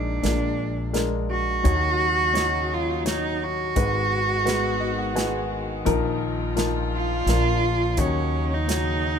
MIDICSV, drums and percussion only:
0, 0, Header, 1, 2, 480
1, 0, Start_track
1, 0, Key_signature, -6, "minor"
1, 0, Tempo, 703400
1, 1125, Time_signature, 3, 2, 24, 8
1, 6271, End_track
2, 0, Start_track
2, 0, Title_t, "Drums"
2, 160, Note_on_c, 9, 42, 43
2, 170, Note_on_c, 9, 38, 69
2, 229, Note_off_c, 9, 42, 0
2, 238, Note_off_c, 9, 38, 0
2, 643, Note_on_c, 9, 42, 48
2, 652, Note_on_c, 9, 38, 70
2, 711, Note_off_c, 9, 42, 0
2, 720, Note_off_c, 9, 38, 0
2, 1126, Note_on_c, 9, 42, 48
2, 1128, Note_on_c, 9, 36, 94
2, 1194, Note_off_c, 9, 42, 0
2, 1197, Note_off_c, 9, 36, 0
2, 1606, Note_on_c, 9, 42, 48
2, 1616, Note_on_c, 9, 38, 69
2, 1675, Note_off_c, 9, 42, 0
2, 1684, Note_off_c, 9, 38, 0
2, 2088, Note_on_c, 9, 42, 57
2, 2097, Note_on_c, 9, 38, 72
2, 2156, Note_off_c, 9, 42, 0
2, 2165, Note_off_c, 9, 38, 0
2, 2567, Note_on_c, 9, 42, 53
2, 2569, Note_on_c, 9, 36, 82
2, 2635, Note_off_c, 9, 42, 0
2, 2637, Note_off_c, 9, 36, 0
2, 3049, Note_on_c, 9, 42, 49
2, 3059, Note_on_c, 9, 38, 69
2, 3117, Note_off_c, 9, 42, 0
2, 3127, Note_off_c, 9, 38, 0
2, 3524, Note_on_c, 9, 42, 51
2, 3534, Note_on_c, 9, 38, 67
2, 3593, Note_off_c, 9, 42, 0
2, 3602, Note_off_c, 9, 38, 0
2, 4001, Note_on_c, 9, 42, 49
2, 4004, Note_on_c, 9, 36, 85
2, 4069, Note_off_c, 9, 42, 0
2, 4073, Note_off_c, 9, 36, 0
2, 4482, Note_on_c, 9, 42, 51
2, 4492, Note_on_c, 9, 38, 72
2, 4550, Note_off_c, 9, 42, 0
2, 4560, Note_off_c, 9, 38, 0
2, 4964, Note_on_c, 9, 42, 52
2, 4973, Note_on_c, 9, 38, 68
2, 5032, Note_off_c, 9, 42, 0
2, 5041, Note_off_c, 9, 38, 0
2, 5440, Note_on_c, 9, 42, 57
2, 5444, Note_on_c, 9, 36, 85
2, 5509, Note_off_c, 9, 42, 0
2, 5512, Note_off_c, 9, 36, 0
2, 5929, Note_on_c, 9, 42, 53
2, 5939, Note_on_c, 9, 38, 68
2, 5997, Note_off_c, 9, 42, 0
2, 6007, Note_off_c, 9, 38, 0
2, 6271, End_track
0, 0, End_of_file